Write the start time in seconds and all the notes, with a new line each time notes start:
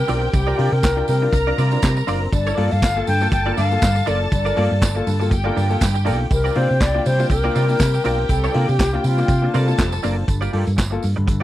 Already playing: G4 A#4 G5
0.07 B1 C4 D4 F4 A#4 D5, open hi-hat, tambourine
0.22 F4 A#4, muted clean electric guitar stroke
0.33 C2 C3 G3 G4, muted clean electric guitar stroke, kick, closed hi-hat, tambourine
0.47 C4 F4 A#4 D5
0.58 C3 C4 D4 F4 A#4 D5, open hi-hat
0.72 C3 F4 A#4, muted clean electric guitar stroke
0.83 C2, muted clean electric guitar stroke, kick, snare, clap, closed hi-hat, tambourine
0.96 D4 F4 A#4, muted clean electric guitar stroke
1.08 C3 G3 A#4, open hi-hat, tambourine
1.22 D4 F4 A#4, muted clean electric guitar stroke
1.32 C2 A#4 A#5, muted clean electric guitar stroke, kick, closed hi-hat, tambourine
1.47 C4 D4 F4 A#4 D5
1.58 C3 G3 C4 F4 A#4 D5, snare, open hi-hat, tambourine
1.72 D4 F4 A#4, muted clean electric guitar stroke, tambourine
1.82 C3 G3, kick, snare, clap, closed hi-hat, tambourine
1.97 muted clean electric guitar stroke, tambourine
2.07 F#1 C4 D4 F4 A#4 D5, open hi-hat, tambourine
2.21 F4 A#4, muted clean electric guitar stroke
2.32 G1 G2 D3 A4 D5 A5, muted clean electric guitar stroke, kick, closed hi-hat, tambourine
2.46 D4 F4 A#4 D5, tambourine
2.57 G2 A#3 D4 F4 A4 A#4 D5, open hi-hat
2.71 G2 F4 A4 F5, muted clean electric guitar stroke, tambourine
2.82 G1, muted clean electric guitar stroke, kick, snare, clap, closed hi-hat, tambourine
2.96 A#3 F4 A4, muted clean electric guitar stroke
3.07 G2 D3 G5, open hi-hat, tambourine
3.21 A#3 F4 A4, muted clean electric guitar stroke, tambourine
3.32 G1 G5, muted clean electric guitar stroke, kick, closed hi-hat, tambourine
3.46 A#3 D4 F4 A4 A#4 D5
3.56 G2 D3 D4 F4 A#4 D5 F5, snare, open hi-hat, tambourine
3.70 A#3 F4 A4, muted clean electric guitar stroke, tambourine
3.81 G2 D3, kick, snare, clap, closed hi-hat, tambourine
3.95 muted clean electric guitar stroke, tambourine
4.06 F#1 A#3 D4 F4 A4 A#4 D5, open hi-hat, tambourine
4.20 F4 A4, muted clean electric guitar stroke
4.31 G1 G2 D3 D5, muted clean electric guitar stroke, kick, closed hi-hat, tambourine
4.45 D4 F4 A#4 D5, tambourine
4.56 G2 A#3 D4 F4 A4 A#4 D5, open hi-hat
4.70 G2 F4 A4, muted clean electric guitar stroke
4.81 G1, muted clean electric guitar stroke, kick, snare, clap, closed hi-hat, tambourine
4.95 A#3 F4 A4, muted clean electric guitar stroke
5.06 G2 D3, open hi-hat, tambourine
5.20 A#3 F4 A4, muted clean electric guitar stroke, tambourine
5.30 G1 G4 G5, muted clean electric guitar stroke, kick, closed hi-hat, tambourine
5.44 A#3 D4 F4 A4 A#4 D5
5.55 G2 D3 D4 F4 A#4 D5, snare, open hi-hat, tambourine
5.69 A#3 F4 A4, muted clean electric guitar stroke, tambourine
5.80 G2 D3, kick, snare, clap, closed hi-hat, tambourine
5.94 muted clean electric guitar stroke, tambourine
6.05 B1 A#3 D4 F4 A4 A#4 D5, open hi-hat, tambourine
6.20 F4 A4, muted clean electric guitar stroke
6.30 C2 C3 G3 G4 A#4 G5, muted clean electric guitar stroke, kick, closed hi-hat, tambourine
6.44 C4 F4 A#4 D5, tambourine
6.55 C3 A#3 C4 D4 F4 A#4 C5 D5, open hi-hat
6.69 C3 D4 F4, muted clean electric guitar stroke
6.80 C2 D5, muted clean electric guitar stroke, kick, snare, clap, closed hi-hat, tambourine
6.94 A#3 D4 F4, muted clean electric guitar stroke
7.05 C3 G3 C5, open hi-hat, tambourine
7.19 A#3 D4 F4, muted clean electric guitar stroke, tambourine
7.30 C2 A#4, muted clean electric guitar stroke, kick, closed hi-hat, tambourine
7.44 A#3 C4 D4 F4 A#4 D5
7.54 C3 G3 C4 F4 A#4 D5, snare, open hi-hat, tambourine
7.68 A#3 D4 F4, muted clean electric guitar stroke, tambourine
7.79 C3 G3, kick, snare, clap, closed hi-hat, tambourine
7.94 muted clean electric guitar stroke, tambourine
8.04 B1 A#3 C4 D4 F4 A#4 D5, open hi-hat, tambourine
8.19 D4 F4, muted clean electric guitar stroke
8.29 C2 C3 G3 A4, muted clean electric guitar stroke, kick, closed hi-hat, tambourine
8.44 C4 F4 A#4 D5, tambourine
8.54 C3 A#3 C4 D4 F4 A#4 D5, open hi-hat
8.68 C3 D4 F4 G4, muted clean electric guitar stroke, tambourine
8.79 C2, muted clean electric guitar stroke, kick, snare, clap, closed hi-hat, tambourine
8.93 A#3 D4 F4, muted clean electric guitar stroke
8.98 G4
9.03 C3 G3 F4, open hi-hat, tambourine
9.17 A#3 D4 F4, muted clean electric guitar stroke, tambourine
9.28 C3, kick, closed hi-hat, tambourine
9.42 A#3 D4 F4, muted clean electric guitar stroke
9.54 C3 G3 C4 F4 A4 A#4 D5 A5, snare, open hi-hat, tambourine
9.67 A#3 D4 F4, muted clean electric guitar stroke, tambourine
9.77 F1 C3 G3, kick, snare, clap, closed hi-hat, tambourine
9.92 muted clean electric guitar stroke, tambourine
10.03 F#1 A#3 C4 D4 F4 A#4 D5, open hi-hat, tambourine
10.17 D4 F4, muted clean electric guitar stroke
10.28 G1 G2 D3, muted clean electric guitar stroke, kick, closed hi-hat, tambourine
10.41 A#3 F4 G4 D5, tambourine
10.52 G2 A#3 F4 G4 A4 D5, open hi-hat
10.65 G2, muted clean electric guitar stroke, closed hi-hat, tambourine
10.76 G1, muted clean electric guitar stroke, kick, snare, clap, closed hi-hat, tambourine
10.90 A#3 F4 A4, muted clean electric guitar stroke
11.03 G2, open hi-hat, tambourine
11.16 G2 D3, muted clean electric guitar stroke, closed hi-hat
11.27 G1 G2 D3, muted clean electric guitar stroke, kick, closed hi-hat, tambourine